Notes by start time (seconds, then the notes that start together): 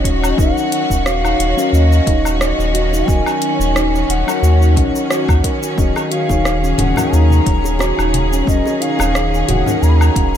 Already playing: D#1 D#3 F#3 C#4 D#4 F#4 A#4 C#5 D#5
0.04 C#4, kick, closed hi-hat
0.24 low woodblock, shaker
0.36 D#1 F#3 C#4 D#4 F#5, kick, shaker
0.40 A#4
0.57 shaker
0.72 closed hi-hat
0.90 D#1, kick, shaker
1.06 F#4 F5, cross-stick, shaker
1.24 D#4, low woodblock, shaker
1.39 D#1, closed hi-hat
1.56 F#3 C#4 D#4 A#4, shaker
1.73 D#2 C#4 D#5, shaker
1.92 shaker
2.07 D#1 D#4, kick, closed hi-hat
2.25 low woodblock, shaker
2.40 D#5, cross-stick, shaker
2.59 D#1, shaker
2.74 F#4, closed hi-hat
2.93 D#4, shaker
3.06 D#1 F#3 C#4 D#4 A#4 G#5, kick, shaker
3.26 C#4, low woodblock, shaker
3.42 C#4, closed hi-hat
3.60 D#1, shaker
3.76 D#4, cross-stick, shaker
3.95 shaker
4.09 D#1 F#5, closed hi-hat
4.27 F#3 C#4 D#4 A#4, low woodblock, shaker
4.43 D#2 F#4, shaker
4.61 D#4, shaker
4.74 A#1 F#3 C#4 D#4, kick, closed hi-hat
4.78 A#4
4.95 A#4, shaker
5.10 F#4, cross-stick, shaker
5.29 D#2, kick, low woodblock, shaker
5.44 A#4, kick, closed hi-hat
5.62 F#4, shaker
5.76 D#1 F#3 C#4 D#4 G#4 A#4 D#5, kick, shaker
5.96 high bongo, low woodblock, shaker
6.11 F#4 F5, closed hi-hat
6.29 D#1 D#4, kick, high bongo, shaker
6.45 cross-stick, shaker
6.63 C#4, shaker
6.78 D#1 C#4 F#5, closed hi-hat, high conga, low conga
6.96 F#3 C#4 D#4 A#4, low conga, low woodblock, shaker
7.12 D#2 D#4 A#5, shaker
7.30 high conga, shaker
7.46 D#1, kick, closed hi-hat
7.64 high bongo, shaker
7.79 F#4, cross-stick, high bongo, shaker
7.98 D#1 D#4, low woodblock, shaker
8.14 closed hi-hat, high conga
8.32 C#4, shaker
8.45 D#1 F#3 C#4 D#4 D#5, kick, shaker
8.49 A#4
8.66 high bongo, shaker
8.81 D#4 F5, closed hi-hat
8.99 D#1, high bongo, low woodblock, shaker
9.15 cross-stick, shaker
9.34 shaker
9.48 D#1 F#4 F#5, closed hi-hat, high conga, low conga
9.66 F#3 C#4 D#4 A#4, low conga, shaker
9.82 D#2 A#5, shaker
9.89 B5
9.97 C#4 A#5, low woodblock
10.02 shaker
10.16 D#1 C#4, kick, closed hi-hat